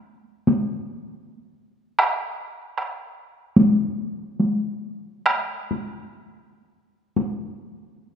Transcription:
0.47 taiko high
1.99 taiko rim
2.78 taiko rim
3.56 taiko high
4.40 taiko high
5.26 taiko rim
5.71 taiko high
7.16 taiko high

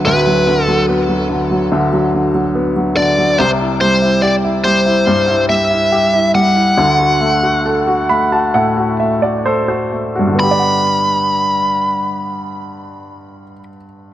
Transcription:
Already playing: D2 D3 F#3 B3
0.06 D1 D2 B4
0.27 F#3
0.47 D3
0.63 A4
0.68 F#3
0.88 B3
1.09 F#3
1.30 D3
1.51 F#3
1.72 D2 D3
1.93 F#3
2.14 D3
2.35 F#3
2.55 B3
2.76 F#3
2.97 D3 D5
3.18 F#3
3.38 C2 C3 C5
3.60 E4
3.81 G3 C5
4.02 E4
4.22 G4 D5
4.44 E4
4.64 G3 C5
4.86 E4
5.07 G2 G3
5.28 E4
5.49 G3 E5
5.71 E4
5.92 G4
6.13 E4
6.35 G3 F#5
6.56 E4
6.77 D2 D3
6.99 F#4
7.21 A3
7.43 F#4
7.66 A4
7.87 F#4
8.09 A3 B5
8.32 F#4 A5
8.54 A2 A3 F#5
8.77 F#4
9.00 A3 E5
9.22 F#4 D5
9.46 A4 C5
9.68 F#4 C5
9.92 A3
10.16 G2 F#4
10.27 D3
10.35 B3
10.39 G4 B5
10.51 D5
10.59 F#5

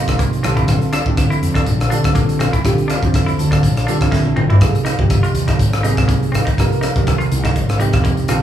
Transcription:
Already playing: C3 F3 A#3 D#4 F4
0.08 G#1, kick, cross-stick, closed hi-hat
0.19 A#3, kick, closed hi-hat
0.33 closed hi-hat
0.43 A#1 D3 G3 C4 F4 A4, cross-stick, closed hi-hat
0.57 E4, kick, closed hi-hat
0.68 A#1, kick, cross-stick, closed hi-hat
0.81 closed hi-hat
0.93 D4, muted fretless electric bass stroke, cross-stick, closed hi-hat
1.06 A1 D3 G3 C4 F4 A4, kick
1.17 kick, cross-stick, closed hi-hat
1.30 E4, closed hi-hat
1.42 F2, closed hi-hat
1.54 D4, kick, cross-stick, closed hi-hat
1.66 A#1, kick, closed hi-hat
1.80 cross-stick, closed hi-hat
1.90 D3 G3 C4 D4 F4 A4, closed hi-hat
2.04 A#1, kick, cross-stick, closed hi-hat
2.15 A#3, kick, closed hi-hat
2.29 muted fretless electric bass stroke, closed hi-hat
2.39 A#1 C4, cross-stick, closed hi-hat
2.53 E4, muted fretless electric bass stroke, kick, closed hi-hat
2.65 A#1 D3 G3 C4 F4 G4, kick, cross-stick, closed hi-hat
2.78 closed hi-hat
2.88 D4, muted fretless electric bass stroke, cross-stick, closed hi-hat
3.02 F2 D3 G3 C4 F4 C5, kick, closed hi-hat
3.14 kick, cross-stick, closed hi-hat
3.26 E4, closed hi-hat
3.39 D2 A5, closed hi-hat
3.51 D4, kick, cross-stick, closed hi-hat
3.63 A#1 F5, kick, closed hi-hat
3.77 cross-stick, closed hi-hat
3.87 D3 G3 C4 D4 F4 A4, closed hi-hat
4.01 A#1, kick, cross-stick, closed hi-hat
4.12 A#1 A#3 E5, kick, snare
4.25 high tom
4.36 A1 C4 D5, mid tom
4.50 E4, floor tom
4.61 G#1 C3 F3 A#3 D#4 G#4, kick, cross-stick, closed hi-hat
4.75 closed hi-hat
4.85 D#4, muted fretless electric bass stroke, cross-stick, closed hi-hat
4.98 G1 C3 F3 A#3 D#4 G4, kick
5.10 kick, cross-stick, closed hi-hat
5.23 F4, closed hi-hat
5.34 D#2, closed hi-hat
5.48 D#4, kick, cross-stick, closed hi-hat
5.59 G#1, kick, closed hi-hat
5.73 cross-stick, closed hi-hat
5.83 C3 F3 A#3 D#4 G#4, closed hi-hat
5.97 G#1, kick, cross-stick, closed hi-hat
6.08 A#3, kick, closed hi-hat
6.22 muted fretless electric bass stroke, closed hi-hat
6.32 G#1 C4, cross-stick, closed hi-hat
6.45 D#4, muted fretless electric bass stroke, kick, closed hi-hat
6.58 G#1 C3 F3 A#3 D#4 A#4, kick, cross-stick, closed hi-hat
6.72 closed hi-hat
6.81 D#4, muted fretless electric bass stroke, cross-stick, closed hi-hat
6.95 D#2 C3 F3 A#3 D#4 A#4, kick, closed hi-hat
7.07 kick, cross-stick, closed hi-hat
7.18 F4, closed hi-hat
7.32 C2, closed hi-hat
7.44 D#4, kick, cross-stick, closed hi-hat
7.56 G#1, kick, closed hi-hat
7.69 cross-stick, closed hi-hat
7.79 C3 F3 A#3 D#4 G4, closed hi-hat
7.93 F2, kick, cross-stick, closed hi-hat
8.04 A#3, kick, closed hi-hat
8.17 closed hi-hat
8.28 A#1 D3 G3 C4 F4 A4, cross-stick, closed hi-hat

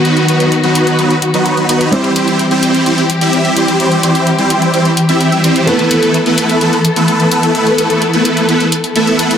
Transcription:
Already playing: D#3 F#3 B3 D#4 F#4 B4
0.05 F#3 B3 D#4 F#4 B4, closed hi-hat
0.17 closed hi-hat
0.28 F#3 B3 D#4 F#4 B4, closed hi-hat
0.40 closed hi-hat
0.52 closed hi-hat
0.64 F#3 B3 D#4 F#4 B4, closed hi-hat
0.75 closed hi-hat
0.87 closed hi-hat
0.99 F#3 B3 D#4 F#4 B4, closed hi-hat
1.10 closed hi-hat
1.22 closed hi-hat
1.34 F#3 B3 D#4 F#4 B4, closed hi-hat
1.46 closed hi-hat
1.57 closed hi-hat
1.69 F#3 B3 D#4 F#4 B4, closed hi-hat
1.81 closed hi-hat
1.91 E3 G3 C4 E4 G4 C5, closed hi-hat
2.04 closed hi-hat
2.16 G3 C4 E4 G4 C5, closed hi-hat
2.28 closed hi-hat
2.39 closed hi-hat
2.51 G3 C4 E4 G4 C5, closed hi-hat
2.63 closed hi-hat
2.75 closed hi-hat
2.86 G3 C4 E4 G4 C5, closed hi-hat
2.98 closed hi-hat
3.10 closed hi-hat
3.21 G3 C4 E4 G4 E5, closed hi-hat
3.33 closed hi-hat
3.45 closed hi-hat
3.57 G3 C4 E4 G4 C5, closed hi-hat
3.68 closed hi-hat
3.80 G3 C4 E4 G4 C5, closed hi-hat
3.92 closed hi-hat
4.03 G3 C4 E4 G4 C5, closed hi-hat
4.15 closed hi-hat
4.27 closed hi-hat
4.39 G3 C4 E4 G4 C5, closed hi-hat
4.50 closed hi-hat
4.62 closed hi-hat
4.74 G3 C4 E4 G4 C5, closed hi-hat
4.85 closed hi-hat
4.97 closed hi-hat
5.09 G3 C4 E4 G4 E5, closed hi-hat
5.21 closed hi-hat
5.32 closed hi-hat
5.44 G3 C4 E4 G4 C5, closed hi-hat
5.56 closed hi-hat
5.66 A3 B3 E4 A4 B4, closed hi-hat
5.79 closed hi-hat
5.91 A3 B3 E4 A4 B4, closed hi-hat
6.03 closed hi-hat
6.14 closed hi-hat
6.26 A3 B3 E4 A4 B4, closed hi-hat
6.38 closed hi-hat
6.49 closed hi-hat
6.61 A3 B3 E4 A4 B4, closed hi-hat
6.73 closed hi-hat
6.85 closed hi-hat
6.96 A3 B3 E4 A4 B4, closed hi-hat
7.08 closed hi-hat
7.20 closed hi-hat
7.31 A3 B3 E4 A4 B4, closed hi-hat
7.43 closed hi-hat
7.55 A3 B3 E4 A4 B4, closed hi-hat
7.67 closed hi-hat
7.78 A3 B3 E4 A4 B4, closed hi-hat
7.90 closed hi-hat
8.02 closed hi-hat
8.13 A3 B3 E4 A4 B4, closed hi-hat
8.25 closed hi-hat
8.37 closed hi-hat
8.49 A3 B3 E4 A4 B4, closed hi-hat
8.60 closed hi-hat
8.72 closed hi-hat
8.84 closed hi-hat
8.96 A3 B3 E4 A4 E5, closed hi-hat
9.07 closed hi-hat
9.19 A3 B3 E4 A4 B4, closed hi-hat
9.31 closed hi-hat

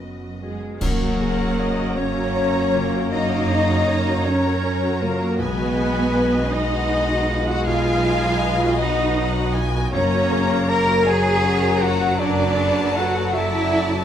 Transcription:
Already playing: F#1 F#2 F#3 B3 F#4 B4 D#5
0.02 B3
0.41 G#3 B3 F#4 G#4 D#5
0.81 F#2 F#3 A#3 A#4 C#5 F#5, concert bass drum, crash
1.00 C#4 F#4
1.19 C#3 G#4 A#4
1.40 F#4
1.58 C#5 D#5
1.79 F#4
1.96 A#3 C#4 A#4 C#5 A#5
2.16 F#4 C#5
2.37 C#4
2.55 F#4
2.74 C#3 F4
2.93 C#4 F#4
3.11 F#2 D#4 F#4 C#5 D#5 A#5
3.30 C#3 C#4
3.49 C#4 D#4 G#4
3.69 F#4
3.88 A#4 C#5
4.06 F#4
4.24 F#3 C#4 C#5
4.44 F#4 C#5
4.63 C#4
4.82 C#4 F#4
5.01 C#3 A#3 F4 A#4
5.20 C#4 F#4
5.39 B1 B2 G#3 B3 B4 D#5 G#5
5.58 B3 F#4
5.77 D#4 G#4
5.95 F#4
6.15 B4
6.33 F#4 D#5
6.52 D#4 D#5 F#5
6.72 F#4
6.90 D#4 B4
7.10 F#4
7.28 D#4 F4
7.47 B3 F#4 F#5
7.66 B1 B2 F4 B4 D#5 F5 G#5
7.86 F#3 D#4
8.05 D#4 F4
8.24 F#3
8.42 B4
8.61 F#4 D#5
8.80 F#3 D#4 D#5 F#5
8.99 F#4 D#5
9.17 D#4 B4 F#5
9.36 F#4
9.55 D#4 F4 G#5
9.73 B3 F#4
9.92 F#1 F#2 A#3 C#4 A#4 C#5 A#5
10.12 A#3 F#4
10.31 C#4 G#4
10.49 F#4
10.68 A#4 A#5
10.87 F#4 C#5
11.05 F#3 G#4 C#5 G#5 A#5
11.25 F#4 C#5
11.44 C#4
11.62 F#4
11.81 C#4 F4 F#4 F#5
12.00 A#3 F#4
12.19 F#2 D4 B4 D5 A5
12.38 A3 F#4
12.58 E4 G#4
12.76 F#4
12.95 F#4 A4 F#5
13.15 F#4 E5
13.33 E4 A4 D5 E5 A5
13.53 F#4 E5
13.72 E4 A4
13.91 F#4

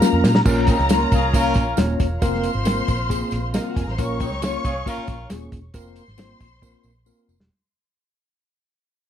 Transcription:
Already playing: C#3 F3 A#3 F4 A#4 A#5
0.01 A#3 C#4 F4 A#4, muted picked electric bass stroke, snare, tambourine
0.13 F2
0.24 A#2, snare, tambourine
0.35 snare
0.45 A#1 F3 A#3 C#4 F4 A#4 A#5, kick, crash, tambourine
0.67 G#3 C4 D#4, kick, closed hi-hat, tambourine
0.79 C#2, snare
0.89 A#3 C#4 F4 A#4, snare, closed hi-hat, tambourine
1.12 C2 C#4 F4 G#4, kick, closed hi-hat, tambourine
1.34 A#3 C#4 F4 A#4 C#5, kick, closed hi-hat, tambourine
1.54 A#1, kick, closed hi-hat, tambourine
1.77 D#1 A#3 C#4 F4 C#5, snare, closed hi-hat, tambourine
2.00 E1, kick, closed hi-hat, tambourine
2.22 F1 C3 A#3 C4 F4 A#4 C5 C6, kick, closed hi-hat, tambourine
2.34 snare
2.43 closed hi-hat, tambourine
2.55 G#1
2.65 A#3 C4 F4 A#4, snare, closed hi-hat, tambourine
2.88 A#1, kick, closed hi-hat, tambourine
3.10 A#3 C4 F4 G#4, kick, closed hi-hat, tambourine
3.31 A#1, closed hi-hat, tambourine
3.54 A#3 C4 D#4 F4 A#4 D#5, snare, closed hi-hat, tambourine
3.62 F4 F5
3.69 F#4 F#5
3.76 F1 G#4 G#5, kick, closed hi-hat, tambourine
3.84 A#4 A#5
3.88 A1 C5 C6, snare
3.98 A#1 A#3 C#4 F4 A#4 C#5 C#6, kick, closed hi-hat, tambourine
4.20 G#3 C4 D#4, kick, closed hi-hat, tambourine
4.31 C#2, snare
4.42 A#3 C#4 F4 C#5, snare, closed hi-hat, tambourine
4.64 C2 C#4 F4 G#4, kick, closed hi-hat, tambourine
4.86 A#3 C#4 F4 A#4, kick, closed hi-hat, tambourine
4.98 muted picked electric bass stroke
5.07 A#1, kick, closed hi-hat, tambourine
5.30 D#1 A#3 C#4 F4 G#4, snare, closed hi-hat, tambourine
5.52 E1, kick, closed hi-hat, tambourine
5.74 F1 A#3 C4 F4 A#4 C5 C6, kick, closed hi-hat, tambourine
5.96 closed hi-hat, tambourine
6.08 G#1, snare
6.18 A#3 C4 F4 C5, snare, closed hi-hat, tambourine
6.40 A#1, kick, closed hi-hat, tambourine
6.62 A#3 C4 F4 A#4, kick, tambourine
6.83 A#1, tambourine
7.06 A#3 C4 F4 A#4, tambourine
7.29 F1, tambourine
7.40 E1, snare

